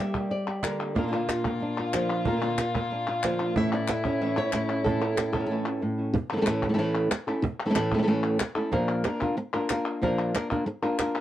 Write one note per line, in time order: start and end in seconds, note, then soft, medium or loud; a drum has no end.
0.00 0.14 G3 soft
0.00 0.96 G3 medium
0.00 0.14 A#3 soft
0.00 0.14 D4 soft
0.00 0.14 G4 soft
0.00 0.52 G4 loud
0.00 0.30 D5 loud
0.00 0.63 E5 medium
0.14 0.29 G3 soft
0.14 0.30 A#3 soft
0.14 0.29 D4 soft
0.14 0.47 G4 medium
0.14 0.30 G4 soft
0.14 cajon bass medium
0.30 0.96 D5 loud
0.30 muted nylon-string guitar stroke soft
0.48 0.64 G4 soft
0.63 0.96 D3 medium
0.63 0.79 G3 soft
0.63 0.79 A#3 soft
0.63 0.78 D4 soft
0.63 0.78 G4 soft
0.63 0.96 A#4 medium
0.63 cajon slap loud
0.63 clap medium
0.79 0.95 G3 soft
0.79 0.95 A#3 soft
0.79 0.95 D4 soft
0.79 0.95 G4 soft
0.95 1.11 A#2 medium
0.95 2.24 A#2 medium
0.95 0.97 D3 medium
0.95 1.01 D3 soft
0.95 0.98 A#3 medium
0.95 1.46 A#3 medium
0.95 1.02 A#3 soft
0.95 0.98 D4 medium
0.95 1.61 D4 medium
0.95 3.57 F4 loud
0.95 0.98 F4 medium
0.95 1.13 F4 medium
0.95 2.25 A#4 medium
0.95 cajon bass loud
0.95 cajon slap soft
0.99 1.06 D3 soft
0.99 1.02 D4 soft
0.99 1.03 F4 soft
1.03 1.11 D3 medium
1.03 1.06 A#3 soft
1.03 1.07 D4 soft
1.03 1.07 F4 medium
1.08 1.11 A#3 medium
1.08 1.12 D4 medium
1.08 1.11 F4 medium
1.12 1.28 A#2 medium
1.12 1.28 D3 medium
1.12 1.28 A#3 medium
1.12 1.28 D4 medium
1.12 1.27 F4 medium
1.12 1.78 F4 medium
1.28 1.59 A#3 soft
1.28 1.59 D4 soft
1.28 1.60 F4 soft
1.28 cajon slap loud
1.28 clap medium
1.45 2.25 A#3 medium
1.45 cajon bass medium
1.60 2.25 D4 medium
1.60 muted nylon-string guitar stroke medium
1.79 2.25 F4 medium
1.92 2.09 D3 soft
1.92 2.25 F3 medium
1.92 2.09 A#3 soft
1.92 2.08 D4 soft
1.92 2.07 F4 soft
1.92 cajon slap loud
1.92 clap medium
2.08 2.24 A#3 soft
2.08 2.24 D4 soft
2.08 2.25 F4 soft
2.25 2.39 A#2 medium
2.25 3.55 A#2 medium
2.25 2.30 D3 medium
2.25 2.31 A#3 medium
2.25 2.32 D4 medium
2.25 2.32 F4 medium
2.25 3.55 A#4 medium
2.25 cajon bass medium
2.31 2.35 D3 soft
2.31 2.35 A#3 soft
2.31 2.36 D4 soft
2.31 2.36 F4 soft
2.36 2.40 D3 medium
2.36 2.40 A#3 medium
2.36 2.40 D4 medium
2.36 2.40 F4 medium
2.41 2.57 A#2 medium
2.41 2.57 D3 medium
2.41 2.58 A#3 medium
2.41 2.57 D4 medium
2.41 2.56 F4 medium
2.41 3.07 F4 medium
2.57 2.90 A#3 soft
2.57 2.90 D4 soft
2.57 2.90 F4 soft
2.57 cajon slap loud
2.57 clap medium
2.75 3.55 A#3 medium
2.75 cajon bass medium
2.90 3.55 D4 medium
2.90 muted nylon-string guitar stroke medium
3.08 3.55 F4 medium
3.23 3.39 D3 medium
3.23 3.54 F3 medium
3.23 3.40 A#3 soft
3.23 3.40 D4 medium
3.23 3.38 F4 medium
3.23 cajon slap loud
3.23 clap medium
3.40 3.56 A#3 soft
3.40 3.56 D4 soft
3.40 3.55 F4 soft
3.40 cajon slap soft
3.55 3.71 A2 medium
3.55 4.53 A2 medium
3.55 3.72 E3 medium
3.55 3.72 A3 medium
3.55 3.72 C#4 medium
3.55 5.98 E4 loud
3.55 3.71 E4 medium
3.55 3.73 E5 loud
3.55 cajon bass loud
3.72 3.88 A3 soft
3.72 3.88 C#4 soft
3.72 3.88 E4 soft
3.72 3.89 D5 medium
3.88 4.20 E5 loud
3.88 muted nylon-string guitar stroke soft
3.88 cajon slap loud
3.88 clap medium
4.05 4.21 A3 soft
4.05 5.35 C#4 medium
4.05 4.21 C#4 soft
4.05 4.20 E4 soft
4.05 cajon bass medium
4.21 4.37 A2 medium
4.21 4.37 E3 medium
4.21 4.37 A3 medium
4.21 4.37 C#4 medium
4.21 4.36 E4 medium
4.21 4.37 E5 medium
4.37 4.52 A3 soft
4.37 4.53 C#4 soft
4.37 4.53 E4 medium
4.37 4.84 C#5 loud
4.53 4.85 A2 medium
4.53 muted nylon-string guitar stroke medium
4.53 cajon slap loud
4.53 clap medium
4.70 4.85 A3 soft
4.70 4.86 C#4 soft
4.70 4.85 E4 soft
4.84 5.01 A2 medium
4.84 5.81 A2 medium
4.84 5.02 E3 medium
4.84 5.02 A3 medium
4.84 5.01 C#4 medium
4.84 5.00 E4 medium
4.84 5.15 A4 medium
4.84 cajon bass loud
5.01 5.17 A3 soft
5.01 5.17 C#4 soft
5.01 5.17 E4 soft
5.01 5.18 A#4 medium
5.17 5.32 A4 medium
5.17 muted nylon-string guitar stroke medium
5.17 cajon slap loud
5.17 clap medium
5.33 5.50 A3 soft
5.33 5.50 C#4 soft
5.33 6.13 C#4 medium
5.33 5.49 E4 soft
5.33 5.45 A4 medium
5.33 cajon bass medium
5.41 5.48 A#4 medium
5.47 5.66 A2 medium
5.47 5.66 E3 medium
5.47 6.14 A4 medium
5.51 5.66 A3 medium
5.51 5.66 C#4 medium
5.51 5.65 E4 medium
5.66 5.82 A3 soft
5.66 5.82 C#4 soft
5.66 5.82 E4 soft
5.82 6.13 A2 medium
5.82 muted nylon-string guitar stroke medium
5.98 6.15 A3 soft
5.98 6.14 C#4 soft
5.98 6.14 E4 soft
6.14 muted nylon-string guitar stroke medium
6.14 cajon bass loud
6.32 6.36 E3 soft
6.32 6.36 A3 medium
6.32 6.36 C#4 medium
6.32 6.37 E4 medium
6.32 6.37 A4 medium
6.37 6.40 E3 medium
6.37 6.41 A3 medium
6.37 6.41 C#4 medium
6.37 6.41 E4 medium
6.37 6.41 A4 medium
6.42 6.45 E3 medium
6.42 6.45 A3 medium
6.42 6.46 C#4 medium
6.42 6.46 E4 medium
6.42 6.46 A4 medium
6.46 6.77 A2 medium
6.46 6.68 E3 medium
6.46 6.68 A3 medium
6.46 6.69 C#4 medium
6.46 6.69 E4 loud
6.46 6.69 A4 medium
6.46 cajon slap loud
6.46 clap medium
6.63 cajon bass medium
6.69 6.73 E3 medium
6.69 6.73 A3 medium
6.69 6.73 C#4 medium
6.69 6.74 E4 medium
6.69 6.73 A4 medium
6.74 6.77 E3 medium
6.74 6.78 A3 medium
6.74 6.78 C#4 medium
6.74 6.78 E4 medium
6.74 6.78 A4 medium
6.78 7.10 A2 medium
6.78 7.09 E3 loud
6.78 7.10 A3 loud
6.78 7.10 C#4 loud
6.78 7.10 E4 loud
6.78 7.10 A4 loud
7.11 muted nylon-string guitar stroke medium
7.11 cajon slap loud
7.11 clap medium
7.27 7.44 A3 soft
7.27 7.44 C#4 medium
7.27 7.43 E4 medium
7.27 7.43 A4 medium
7.27 cajon slap soft
7.42 muted nylon-string guitar stroke medium
7.42 cajon bass loud
7.65 7.68 E3 medium
7.65 7.69 A3 medium
7.65 7.69 C#4 medium
7.65 7.69 E4 medium
7.65 7.70 A4 medium
7.70 7.74 E3 medium
7.70 7.74 A3 medium
7.70 7.74 C#4 medium
7.70 7.74 E4 medium
7.70 7.75 A4 medium
7.74 8.06 A2 loud
7.74 7.93 E3 medium
7.74 7.93 A3 medium
7.74 7.93 C#4 medium
7.74 7.94 E4 loud
7.74 7.93 A4 medium
7.74 cajon slap loud
7.74 clap medium
7.92 7.97 E3 medium
7.92 7.97 A3 medium
7.92 7.98 C#4 medium
7.92 7.98 E4 medium
7.92 7.98 A4 medium
7.92 cajon bass medium
7.98 8.01 E3 medium
7.98 8.02 A3 medium
7.98 8.03 C#4 medium
7.98 8.02 E4 medium
7.98 8.03 A4 medium
8.02 8.06 E3 medium
8.02 8.07 A3 medium
8.02 8.07 C#4 medium
8.02 8.07 E4 medium
8.02 8.07 A4 medium
8.07 8.38 A2 loud
8.07 8.39 E3 medium
8.07 8.39 A3 medium
8.07 8.39 C#4 loud
8.07 8.39 E4 loud
8.07 8.40 A4 loud
8.39 muted nylon-string guitar stroke medium
8.39 cajon slap loud
8.39 clap loud
8.55 8.72 A3 soft
8.55 8.72 C#4 medium
8.55 8.72 E4 medium
8.55 8.71 A4 medium
8.71 9.04 A#2 medium
8.71 9.04 F3 medium
8.71 9.03 A#3 medium
8.71 9.04 D4 loud
8.71 9.05 F4 medium
8.71 9.05 A#4 loud
8.71 cajon bass loud
8.71 cajon slap soft
8.90 cajon slap soft
9.04 9.20 A#3 medium
9.04 9.21 D4 medium
9.04 9.21 F4 medium
9.04 9.20 A#4 medium
9.04 cajon slap loud
9.04 clap medium
9.21 9.36 A#3 soft
9.21 9.36 D4 medium
9.21 9.36 F4 medium
9.21 9.37 A#4 medium
9.21 cajon bass medium
9.37 muted nylon-string guitar stroke medium
9.54 9.70 A#3 medium
9.54 9.70 D4 medium
9.54 9.69 F4 medium
9.54 9.69 A#4 medium
9.69 10.02 A#3 soft
9.69 10.02 D4 medium
9.69 10.02 F4 medium
9.69 10.01 A#4 medium
9.69 cajon slap loud
9.69 clap loud
10.02 10.33 A#2 medium
10.02 10.34 F3 medium
10.02 10.33 A#3 medium
10.02 10.34 D4 loud
10.02 10.34 F4 medium
10.02 10.34 A#4 medium
10.02 cajon bass loud
10.34 10.50 A#3 medium
10.34 10.50 D4 medium
10.34 10.50 F4 medium
10.34 10.49 A#4 medium
10.34 cajon slap loud
10.34 clap medium
10.50 10.65 A#3 medium
10.50 10.66 D4 medium
10.50 10.66 F4 medium
10.50 10.66 A#4 medium
10.50 cajon bass medium
10.66 muted nylon-string guitar stroke medium
10.82 10.99 A#3 soft
10.82 10.99 D4 medium
10.82 10.98 F4 medium
10.82 10.98 A#4 medium
10.99 11.21 A#3 soft
10.99 11.21 D4 medium
10.99 11.21 F4 soft
10.99 11.21 A#4 medium
10.99 cajon slap loud
10.99 clap loud
11.17 cajon slap soft